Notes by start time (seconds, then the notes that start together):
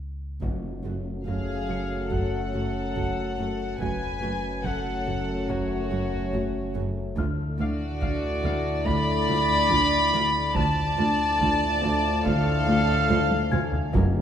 Already playing: C#2
0.41 F#1 F#2 F#3 A3 C#4 F#4, taiko
0.84 F#1 F#2 F#3 A3 F#4
1.26 F#1 F#2 F#3 A3 F#4 G#4 F5, taiko
1.69 F#1 F#2 F#3 A3 F#4 C#7
2.10 F#1 F#2 A3 F#4 A4 F#5, taiko
2.54 F#1 F#2 A3 F#4
2.96 F#1 F#2 F#3 A3 F#4, taiko
3.38 F#1 F#2 A3 F#4
3.80 F#1 F#2 F#3 A3 C#4 F#4 B4 G#5, taiko
4.03 taiko low
4.22 F#1 F#2 F#3 A3 F#4
4.64 F#1 F#2 F#3 A3 F#4 A4 F#5, taiko
5.06 F#1 F#2 F#3 A3 F#4, taiko low
5.48 F#1 F#2 A3 F#4 C#5, taiko
5.91 F#1 F#2 A3 F#4
6.13 taiko low
6.34 F#1 F#2 F#3 A3 F#4, taiko
6.74 F#1 F#2 A3 F#4
7.17 D2 A2 D3 A3 D4 F4 F6, taiko
7.40 taiko low
7.59 D2 A3 D4 F#4 D5 F5
8.02 D2 A3 D4 F5, taiko
8.44 D2 A3 D4 F5, taiko low
8.85 D2 D3 A3 F4 D5 B5, taiko
9.27 D2 D3 A3 F4
9.51 taiko low
9.69 D2 A3 D4 F4, taiko
10.13 D2 D3 A3 F4
10.55 D2 A2 D3 F3 A3 D4 F4 D5 A5, taiko
10.78 taiko low
10.97 D2 A3 D4 F4
11.40 D2 A3 D4 F4, taiko
11.82 D2 A3 D4 F4, taiko low
12.24 D2 D3 A3 F4 A4 F5, taiko
12.67 D2 D3 A3 F4
12.89 taiko low
13.09 D2 A3 D4 F4, taiko high
13.31 taiko high
13.51 D2 D3 A3 F4 G#5 G#6, taiko mid
13.73 taiko low
13.92 F#1 F#2 A2 C#3 F#3 A3 F#4, taiko
14.16 taiko low